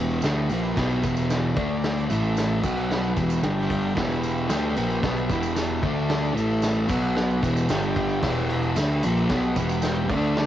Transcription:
Already playing: E1 E2 B2 E3 E4 G4 B4
0.10 tambourine
0.22 D2 D3 A3 E4 G4 B4, snare, ride, tambourine
0.26 D4
0.48 A#1 A#2 F3, ride, tambourine
0.53 A#3
0.63 tambourine
0.76 B1 B2 F#3 B3 E4 G4 B4, kick, snare, ride, tambourine
0.90 tambourine
1.03 E1 E2 B2 E3, kick, ride, tambourine
1.17 tambourine
1.29 E4 G4 B4, snare, ride, tambourine
1.54 D2 D3 D4 A4 D5, kick, ride, tambourine
1.58 A3 D4
1.84 snare, ride, tambourine
1.98 tambourine
2.09 A1 A2 E3 A3 E4 A4 E5, ride, tambourine
2.24 tambourine
2.37 snare, ride, tambourine
2.64 B1 B2 F#3 B3 F#4 B4 F#5, kick, tambourine, crash
2.77 tambourine
2.91 snare, tambourine
3.03 tambourine
3.16 E1 E2 B2 E3 G4 B4 E5, kick, ride, tambourine
3.30 tambourine
3.42 G1 G2 D3 G3 G4 D5 G5, snare, ride, tambourine
3.58 tambourine
3.70 kick, ride, tambourine
3.95 E1 E2 B2 E3 G4 B4 E5, kick, snare, ride, tambourine
4.11 tambourine
4.23 ride, tambourine
4.37 tambourine
4.49 D2 D3 A3 D4 G4 B4 G5, snare, ride, tambourine
4.75 A#1 A#2 F3 A#3, ride, tambourine
4.90 tambourine
5.02 B1 B2 F#3 B3 G4 B4 E5, kick, snare, ride, tambourine
5.17 tambourine
5.29 E1 E2 B2 E3, kick, ride, tambourine
5.43 tambourine
5.56 G4 B4 E5, snare, ride, tambourine
5.70 tambourine
5.82 D2 D3 A3 D4 A4, kick, ride, tambourine
5.87 D4 D5
6.09 snare, ride, tambourine
6.25 tambourine
6.34 A1 A2 E3 A3, ride, tambourine
6.39 E4 A4 E5
6.50 tambourine
6.62 snare, ride, tambourine
6.88 B1 B2 F#3 B3 F#4 B4 F#5, kick, tambourine, crash
7.03 tambourine
7.16 snare, tambourine
7.30 tambourine
7.42 E1 E2 B2 E3 G4 B4 E5, kick, ride, tambourine
7.56 tambourine
7.68 G1 G2 D3 G3 G4 D5 G5, snare, ride, tambourine
7.82 tambourine
7.95 kick, ride, tambourine
8.09 tambourine
8.22 E1 E2 B2 E3 G4 B4 E5, kick, snare, tambourine, crash
8.38 tambourine
8.49 ride
8.63 tambourine
8.75 D2 D3 A3 D4 G4 B4 E5, snare, ride, tambourine
9.02 A#1 A#2 F3 A#3, ride, tambourine
9.17 tambourine
9.29 B1 B2 F#3 B3 G4 B4 F#5, kick, snare, ride, tambourine
9.42 tambourine
9.56 E1 E2 B2 E3, kick, ride, tambourine
9.69 tambourine
9.81 G4 B4 G5, snare, ride, tambourine
9.95 tambourine
10.08 D2 D3 A3 D4 A4 D5, kick, tambourine, crash
10.36 snare, tambourine

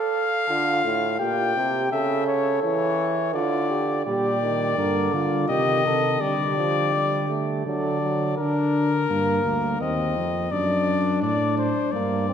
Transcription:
Already playing: A4 F5
0.49 D3 F4
0.84 A2
1.19 A#2 G4 G5
1.56 C3
1.92 C#3 A4 E5
2.27 C#5
2.62 E3 C#5
3.33 D3 F4 D5
3.70 G4
4.05 A#2 G3 G4 D5
4.42 D#3
4.77 G2 D3 A#4
5.13 D3 F4
5.48 C3 D#3 G4 D#5
5.85 C3 A4
6.20 D3 G3 G4 D5
6.57 F3
6.94 G3
7.29 A3
7.66 D3 F#3 A4 D5
8.02 F#3
8.37 D3 D4 A#4
9.10 G2 A#3
9.45 D2
9.80 D#2 C4 D#5
10.16 F2
10.52 F#2 D4 D5
11.22 A2 D5
11.57 C5
11.92 G2 A#3 D5
12.29 C4

